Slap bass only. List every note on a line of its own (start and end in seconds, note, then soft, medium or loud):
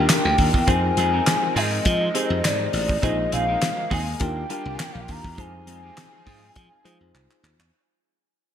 0.25 0.35 D2 medium
0.39 0.50 D#2 medium
0.54 0.65 E2 medium
0.68 0.90 F2 medium
0.97 1.20 F2 medium
1.56 1.79 G#2 medium
1.86 2.08 F3 loud
2.30 2.41 F2 loud
2.44 2.67 G#2 medium
2.73 2.96 A1 loud
3.03 3.26 A#1 loud
3.33 3.55 A#1 medium
3.91 4.14 D#2 medium
4.21 4.43 D#2 loud
4.65 4.76 C2 loud
4.95 5.06 A#1 medium
5.09 5.21 D#2 loud
5.25 5.35 E2 loud
5.38 5.61 F2 medium
5.67 5.90 F2 medium
6.26 6.49 G#2 medium
6.56 6.68 F3 loud
6.85 6.97 F3 loud
7.01 7.11 F2 medium
7.14 7.26 C2 loud
7.43 7.56 D#2 medium
7.59 7.70 E2 medium